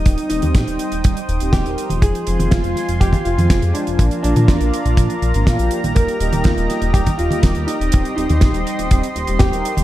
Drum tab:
HH |xxxxxxxxxxxxxxxx|xxxxxxxxxxxxxxxx|xxxxxxxxxxxxxxxx|xxxxxxxxxxxxxxxx|
SD |----o-------o---|----o-o-----o---|----o-------o---|----o-o-----o---|
T1 |---o-----------o|---o-----o-o----|---o-----------o|---o-----o-o----|
BD |o---o---o---o---|o---o---oo--o---|o---o---o---o---|o---o---oo--o---|

HH |xxxxxxxxxxxxxxxx|
SD |----o-------o---|
T1 |---o-----------o|
BD |o---o---o---o---|